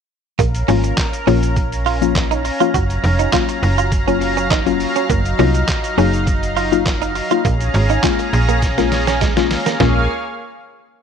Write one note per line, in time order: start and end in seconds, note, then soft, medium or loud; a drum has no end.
0.39 0.64 A#1 loud
0.39 0.50 A#3 medium
0.39 5.06 C#4 medium
0.39 2.72 A#4 medium
0.39 9.76 F5 medium
0.39 7.41 A#5 medium
0.39 kick loud
0.39 closed hi-hat medium
0.39 shaker medium
0.55 closed hi-hat medium
0.55 shaker medium
0.68 0.93 G#1 loud
0.68 1.02 F3 loud
0.68 1.02 A#3 medium
0.68 0.80 C#4 medium
0.68 1.02 C#4 medium
0.68 1.02 F4 loud
0.68 open hi-hat medium
0.68 shaker medium
0.84 muted clean electric guitar stroke soft
0.84 closed hi-hat medium
0.84 shaker medium
0.97 kick loud
0.97 snare medium
0.97 clap loud
0.97 closed hi-hat medium
0.97 shaker medium
1.13 closed hi-hat medium
1.13 shaker medium
1.27 2.50 A#1 medium
1.27 1.70 F3 medium
1.27 1.70 A#3 medium
1.27 1.38 C#4 medium
1.27 1.70 C#4 medium
1.27 1.70 F4 loud
1.27 open hi-hat medium
1.27 shaker soft
1.43 closed hi-hat medium
1.43 shaker medium
1.56 kick loud
1.56 closed hi-hat medium
1.56 shaker medium
1.72 closed hi-hat medium
1.72 shaker medium
1.86 1.97 F4 medium
1.86 open hi-hat medium
1.86 shaker medium
2.01 2.35 F3 medium
2.01 2.35 A#3 medium
2.01 2.35 C#4 medium
2.01 2.35 F4 loud
2.01 closed hi-hat medium
2.01 shaker medium
2.15 kick loud
2.15 snare medium
2.15 clap loud
2.15 closed hi-hat medium
2.15 shaker medium
2.31 2.41 D#4 medium
2.31 closed hi-hat medium
2.31 shaker medium
2.45 muted clean electric guitar stroke soft
2.45 open hi-hat medium
2.45 shaker medium
2.60 2.74 F3 medium
2.60 2.74 A#3 medium
2.60 2.74 C#4 medium
2.60 2.70 F4 medium
2.60 2.74 F4 loud
2.60 closed hi-hat medium
2.60 shaker medium
2.74 2.99 F#1 loud
2.74 7.41 F#3 medium
2.74 2.85 F#4 medium
2.74 kick loud
2.74 closed hi-hat medium
2.74 shaker medium
2.90 closed hi-hat medium
2.90 shaker medium
3.04 3.28 F1 loud
3.04 muted clean electric guitar stroke soft
3.04 open hi-hat medium
3.04 shaker medium
3.19 3.29 D#4 medium
3.19 closed hi-hat medium
3.19 shaker medium
3.32 3.76 F#3 medium
3.32 3.76 A#3 medium
3.32 3.76 C#4 medium
3.32 3.44 F4 medium
3.32 3.76 F4 loud
3.32 kick loud
3.32 snare medium
3.32 clap loud
3.32 closed hi-hat medium
3.32 shaker medium
3.49 muted clean electric guitar stroke soft
3.49 closed hi-hat medium
3.49 shaker medium
3.63 4.86 F#1 medium
3.63 open hi-hat medium
3.63 shaker medium
3.78 3.88 F4 medium
3.78 closed hi-hat medium
3.78 shaker medium
3.92 kick loud
3.92 closed hi-hat medium
3.92 shaker medium
4.07 4.41 F#3 medium
4.07 4.41 A#3 medium
4.07 4.17 C#4 medium
4.07 4.41 C#4 medium
4.07 4.41 F4 loud
4.07 closed hi-hat medium
4.07 shaker medium
4.21 muted clean electric guitar stroke soft
4.21 open hi-hat medium
4.21 shaker soft
4.37 4.47 C#4 medium
4.37 closed hi-hat medium
4.37 shaker medium
4.50 4.62 D#4 medium
4.50 kick loud
4.50 snare medium
4.50 clap loud
4.50 closed hi-hat medium
4.50 shaker medium
4.66 5.08 F#3 loud
4.66 5.08 A#3 medium
4.66 5.08 C#4 medium
4.66 5.08 F4 loud
4.66 muted clean electric guitar stroke soft
4.66 closed hi-hat medium
4.66 shaker medium
4.80 open hi-hat medium
4.80 shaker medium
4.96 5.06 C#4 medium
4.96 closed hi-hat medium
4.96 shaker medium
5.09 5.34 F#1 loud
5.09 5.21 A#3 medium
5.09 7.42 D#4 medium
5.09 kick loud
5.09 closed hi-hat medium
5.09 shaker medium
5.25 closed hi-hat medium
5.25 shaker medium
5.39 5.64 C2 loud
5.39 5.73 F#3 loud
5.39 5.73 A#3 medium
5.39 5.50 C#4 medium
5.39 5.73 D#4 medium
5.39 5.73 F4 loud
5.39 open hi-hat medium
5.39 shaker medium
5.54 muted clean electric guitar stroke soft
5.54 closed hi-hat medium
5.54 shaker medium
5.68 kick loud
5.68 snare medium
5.68 clap loud
5.68 closed hi-hat medium
5.68 shaker medium
5.84 closed hi-hat medium
5.84 shaker medium
5.98 7.21 F#1 medium
5.98 6.41 F#3 medium
5.98 6.41 A#3 medium
5.98 6.09 C#4 medium
5.98 6.41 D#4 medium
5.98 6.41 G#4 loud
5.98 open hi-hat medium
5.98 shaker soft
6.13 closed hi-hat medium
6.13 shaker medium
6.27 kick loud
6.27 closed hi-hat medium
6.27 shaker medium
6.43 closed hi-hat medium
6.43 shaker medium
6.57 6.68 F4 medium
6.57 open hi-hat medium
6.57 shaker medium
6.72 7.06 F#3 loud
6.72 7.06 A#3 medium
6.72 7.06 D#4 medium
6.72 7.06 F4 loud
6.72 closed hi-hat medium
6.72 shaker medium
6.86 kick loud
6.86 snare medium
6.86 clap loud
6.86 closed hi-hat medium
6.86 shaker medium
7.02 7.12 D#4 medium
7.02 closed hi-hat medium
7.02 shaker medium
7.15 muted clean electric guitar stroke soft
7.15 open hi-hat medium
7.15 shaker medium
7.31 7.45 F#3 medium
7.31 7.45 A#3 medium
7.31 7.45 D#4 medium
7.31 7.41 F4 medium
7.31 7.45 F4 loud
7.31 closed hi-hat medium
7.31 shaker medium
7.45 7.69 A#1 loud
7.45 7.56 A#3 medium
7.45 9.78 C#4 medium
7.45 9.78 G#4 medium
7.45 9.78 A#5 medium
7.45 kick loud
7.45 closed hi-hat medium
7.45 shaker medium
7.61 closed hi-hat medium
7.61 shaker medium
7.74 7.99 G#1 loud
7.74 muted clean electric guitar stroke soft
7.74 open hi-hat medium
7.74 shaker medium
7.90 8.00 D#4 medium
7.90 closed hi-hat medium
7.90 shaker medium
8.03 8.46 G#3 medium
8.03 8.46 A#3 medium
8.03 8.47 C#4 medium
8.03 8.15 C#4 medium
8.03 8.47 F4 loud
8.03 kick loud
8.03 snare medium
8.03 clap loud
8.03 closed hi-hat medium
8.03 shaker medium
8.19 muted clean electric guitar stroke soft
8.19 closed hi-hat medium
8.19 shaker medium
8.33 9.56 A#1 medium
8.33 open hi-hat medium
8.33 shaker medium
8.49 8.59 A#3 medium
8.49 closed hi-hat medium
8.49 shaker medium
8.62 kick loud
8.62 snare medium
8.62 closed hi-hat medium
8.62 shaker medium
8.78 9.11 G#3 medium
8.78 9.11 A#3 medium
8.78 8.88 A#3 medium
8.78 9.12 C#4 medium
8.78 9.12 F4 loud
8.78 snare medium
8.78 closed hi-hat medium
8.78 shaker medium
8.92 muted clean electric guitar stroke soft
8.92 snare medium
8.92 open hi-hat medium
8.92 shaker soft
9.07 9.17 C#4 medium
9.07 snare medium
9.07 closed hi-hat medium
9.07 shaker medium
9.21 9.33 G#3 medium
9.21 kick loud
9.21 snare medium
9.21 closed hi-hat medium
9.21 shaker medium
9.37 9.78 G#3 medium
9.37 9.78 A#3 medium
9.37 9.78 C#4 medium
9.37 9.78 F4 loud
9.37 muted clean electric guitar stroke soft
9.37 snare medium
9.37 closed hi-hat medium
9.37 shaker medium
9.51 snare loud
9.51 open hi-hat medium
9.51 shaker medium
9.66 9.76 A#3 medium
9.66 snare medium
9.66 closed hi-hat medium
9.66 shaker medium
9.80 10.08 A#1 loud
9.80 10.08 G#3 medium
9.80 10.07 A#3 medium
9.80 9.98 A#3 medium
9.80 10.08 A#3 medium
9.80 10.08 C#4 medium
9.80 10.08 F4 medium
9.80 10.07 G#4 medium
9.80 10.07 C#5 medium
9.80 10.07 F5 medium
9.80 snare loud
9.80 floor tom loud